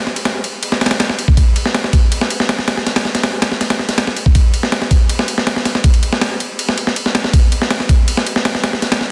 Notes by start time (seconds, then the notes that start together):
0.07 snare
0.16 ride
0.25 snare, ride
0.44 ride
0.63 ride
0.72 snare
0.81 snare, ride
0.86 snare, ride
0.91 snare, ride
1.00 snare, ride
1.10 snare
1.19 ride
1.28 kick
1.37 kick, ride
1.56 ride
1.66 snare
1.75 snare, ride
1.84 snare
1.93 kick, ride
2.12 ride
2.21 snare
2.30 ride
2.40 snare
2.49 snare, ride
2.59 snare
2.68 snare, ride
2.77 snare
2.87 snare, ride
2.96 snare, ride
3.05 snare
3.15 snare, ride
3.23 snare, ride
3.42 snare, ride
3.52 snare
3.61 snare, ride
3.70 snare, ride
3.79 snare
3.89 snare, ride
3.98 snare, ride
4.07 snare
4.17 ride
4.26 kick
4.35 kick, ride
4.54 ride
4.63 snare
4.72 snare, ride
4.82 snare
4.91 kick, ride
5.09 ride
5.19 snare
5.28 ride
5.38 snare
5.47 snare, ride
5.56 snare
5.65 snare, ride
5.75 snare
5.84 kick, ride
5.94 ride
6.03 ride
6.13 snare
6.21 snare, ride
6.40 ride
6.59 ride
6.69 snare
6.78 ride
6.87 snare
6.96 ride
7.06 snare
7.15 snare, ride
7.24 snare
7.33 kick, ride
7.52 ride
7.62 snare
7.71 snare, ride
7.80 snare
7.89 kick, ride
8.08 ride
8.17 snare
8.27 ride
8.36 snare
8.45 snare, ride
8.55 snare
8.64 snare, ride
8.73 snare
8.82 snare, ride
8.92 snare, ride
9.01 snare